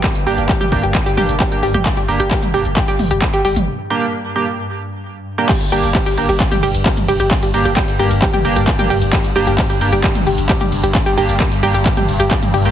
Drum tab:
CC |----------------|----------------|----------------|x---------------|
RD |----------------|----------------|----------------|xxxxxxxxxxxxxxxx|
HH |xxoxxxoxxxoxxxox|xxoxxxoxxxoxxxox|----------------|xxoxxxoxxxoxxxox|
CP |x---x---x---x---|x---x---x---x---|----------------|x---x---x---x---|
T2 |-----o----o----o|-----o----o----o|----------------|---------o---o--|
BD |o---o-o-o---o---|o---o---o---o---|----------------|o---o---o---o---|

CC |----------------|----------------|----------------|
RD |xxxxxxxxxxxxxxxx|xxxxxxxxxxxxxxxx|xxxxxxxxxxxxxxxx|
HH |xxoxxxoxxxoxxxox|xxoxxxoxxxoxxxox|xxoxxxoxxxoxxxox|
CP |x---x---x---x---|x---x---x---x---|x---x---x---x---|
T2 |---------o---o--|---------o---o--|---------o---o--|
BD |o---o---o---o---|o---o---o---o---|o---o---o---o---|